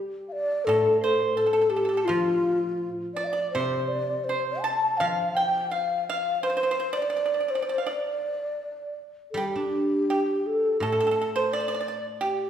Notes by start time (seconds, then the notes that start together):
Already playing: G3 G4
0.28 D5 F5
0.65 A2 A4
1.01 C5
1.33 A4 C5
1.46 A4
1.53 A4
1.62 A4
1.70 G4 A4
1.76 A4
1.85 A4
1.97 A4
2.05 F3 F4
3.14 D5
3.24 D5 F5
3.33 D5
3.51 C5
3.55 C3 C5
3.88 D5
4.24 C5
4.29 C5
4.60 A5
4.97 F3 F5
5.35 G5
5.71 F5
6.08 F5
6.43 C5
6.50 C5
6.57 C5
6.63 C5
6.71 C5
6.80 C5
6.93 D5
6.97 D5
7.02 D5
7.10 D5
7.17 D5
7.26 D5
7.34 D5
7.40 D5
7.48 C5 D5
7.55 D5
7.62 D5
7.69 D5
7.78 F5
7.87 D5
9.31 G3 A4
9.37 G4
9.56 D4
10.10 G4
10.46 A4
10.80 A2 A4
10.92 A4
11.00 A4
11.07 A4
11.11 A4
11.21 A4
11.36 C5
11.53 D5
11.60 D5
11.68 D5
11.75 D5
11.81 D5
11.88 D5
12.21 G4